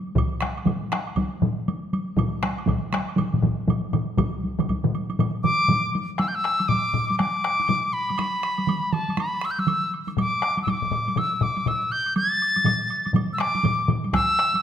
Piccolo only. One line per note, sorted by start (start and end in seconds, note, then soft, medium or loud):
5.43 5.90 D6 medium
6.19 6.30 E6 medium
6.28 6.37 G6 medium
6.35 6.70 E6 medium
6.68 7.18 D6 medium
7.19 7.95 D6 medium
7.93 8.94 B5 medium
8.93 9.20 A5 medium
9.18 9.47 B5 medium
9.45 9.52 E6 medium
9.51 9.61 G6 medium
9.59 9.93 E6 medium
10.20 10.60 D6 medium
10.63 10.71 E6 medium
10.70 11.20 D6 medium
11.18 11.44 E6 medium
11.43 11.69 D6 medium
11.68 11.93 E6 medium
11.92 12.16 G6 medium
12.17 13.11 A6 medium
13.33 13.41 E6 medium
13.40 13.89 D6 medium
14.14 14.62 E6 loud